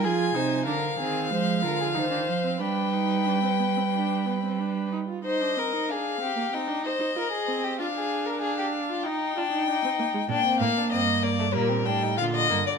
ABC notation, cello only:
X:1
M:4/4
L:1/8
Q:1/4=94
K:Cm
V:1 name="Cello" clef=bass
F, C, D, E, F, D, E, F, | G,6- G, z | z8 | z8 |
B,, =A,, G,,2 B,, A,, B,, G,, |]